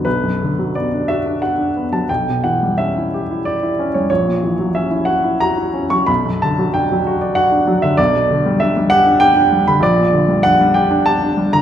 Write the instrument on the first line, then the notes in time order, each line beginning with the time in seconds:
grand piano
0.05 B1 B4
0.23 F#2
0.42 D3
0.59 F#3
0.75 B3 D5
0.93 D4
1.08 F#4 E5
1.26 D4
1.42 F#4 F#5
1.59 D4
1.76 B3
1.92 F#3 A5
2.09 B1 G5
2.29 B2
2.44 E3 F#5
2.63 G3
2.78 C#4 E5
2.98 E4
3.14 G4
3.31 E4
3.45 G4 D5
3.63 E4
3.79 C#4
3.94 G3 C#5
4.10 A#1 C#5
4.27 A#2
4.43 E3
4.59 F#3
4.75 C#4 E5
4.91 E4
5.05 F#4 F#5
5.24 E4
5.40 F#4 A#5
5.57 E4
5.73 C#4
5.90 F#3 C#6
6.07 B1 B5
6.25 F#2
6.42 D3 A5
6.59 F#3
6.74 D4 G5
6.92 F#3
7.07 F#4
7.21 D5
7.35 F#4 F#5
7.52 D4
7.67 F#3
7.82 D3 E5
7.97 B1 D5
8.15 B2
8.31 D3
8.46 G3
8.60 D4 E5
8.77 G3
8.90 G4 F#5
9.06 D4
9.20 G4 G5
9.37 D4
9.52 G3
9.67 D3 B5
9.80 A#1 D5
9.99 A#2
10.13 D3
10.28 G3
10.43 D4 F#5
10.61 G3
10.74 G4 G5
10.91 D4
11.06 G4 A5
11.23 D4
11.37 G3
11.53 D3 A#5